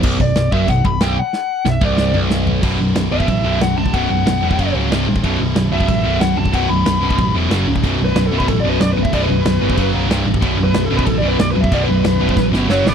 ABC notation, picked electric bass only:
X:1
M:4/4
L:1/8
Q:1/4=185
K:F#phr
V:1 name="Picked electric bass" clef=bass
B,,,, B,,,, B,,,, F,,, B,,,, B,,,, B,,,, z | z2 B,,,, =C,,,2 B,,,,3 | B,,,, B,,,, B,,,, B,,,, A,,, B,,,, B,,,, B,,,, | B,,,, B,,,, B,,,, E,,, F,,, C,,, =C,,, A,,, |
B,,,, B,,,, B,,,, B,,,, A,,, B,,,, B,,,, B,,,, | B,,,, B,,,, B,,,, B,,,, A,,, E,,, F,,, C,,, | B,,,, B,,,, B,,,, B,,,, A,,, B,,,, B,,,, B,,,, | B,,,, B,,,, B,,,, G,,, F,,, B,,,, =C,,, A,,, |
B,,,, B,,,, B,,,, B,,,, A,,, B,,,, B,,,, B,,,, | B,,,, B,,,, B,,,, B,,,, A,,, G,,, F,,, A,,, |]